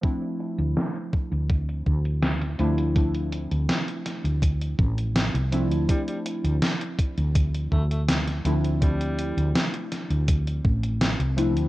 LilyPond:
<<
  \new Staff \with { instrumentName = "Synth keys" } { \time 4/4 \key d \minor \tempo 4 = 82 <f a c' d' e'>2.~ <f a c' d' e'>8 <f a c' d' e'>16 r16 | <f a c' d' e'>2.~ <f a c' d' e'>8 <f a c' d' e'>16 r16 | <f a c' d' e'>2.~ <f a c' d' e'>8 <f a c' d' e'>16 r16 | <f a c' d' e'>2.~ <f a c' d' e'>8 <f a c' d' e'>16 r16 | }
  \new Staff \with { instrumentName = "Tenor saxophone" } { \clef bass \time 4/4 \key d \minor r1 | r1 | g16 g16 r2 a16 a16 r4 | g4 r2. | }
  \new Staff \with { instrumentName = "Fretless electric bass" } { \clef bass \time 4/4 \key d \minor r8. d,16 r8. d,8. d,4 d,8~ | d,8. d,16 r8. d,8. a,,8. c,8 d,16 | r8. d,16 r8. d,8. d,4 d,8~ | d,8. d,16 r8. d,8. a,,8. c,8 d,16 | }
  \new DrumStaff \with { instrumentName = "Drums" } \drummode { \time 4/4 <hh bd>16 hh16 hh16 hh16 <hh sn>16 hh16 <hh bd>16 hh16 <hh bd>16 hh16 bd16 hh16 <hh sn>16 <hh sn>16 hh16 hh16 | <hh bd>16 hh16 hh16 hh16 <hh sn>16 hh16 <hh sn>16 hh16 <hh bd>16 hh16 bd16 hh16 <hh sn>16 hh16 hh16 hh16 | <hh bd>16 hh16 hh16 hh16 <hh sn>16 hh16 <hh bd>16 hh16 <hh bd>16 hh16 bd16 hh16 <hh sn>16 <hh sn>16 hh16 hh16 | <hh bd>16 hh16 hh16 hh16 <hh sn>16 hh16 <hh sn>16 hh16 <hh bd>16 hh16 bd16 hh16 <hh sn>16 hh16 hh16 hh16 | }
>>